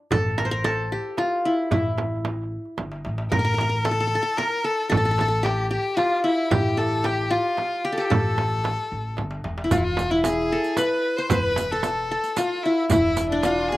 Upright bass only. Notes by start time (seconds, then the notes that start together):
0.13 A1
1.72 A1
2.79 G1
3.06 A1
3.32 A1
4.93 A1
6.53 A1
8.12 A1
8.92 A1
9.18 G1
9.45 E1
9.72 E1
11.32 E1
12.92 E1